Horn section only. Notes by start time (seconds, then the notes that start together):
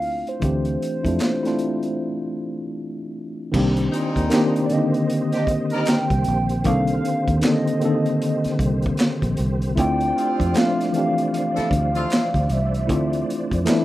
3.92 A#2 G3 D#4
5.33 D#3 D4 G4
5.72 G3 D#4 A#4
10.16 C3 A3 F4
11.56 F3 E4 A4
11.96 C3 A3 F4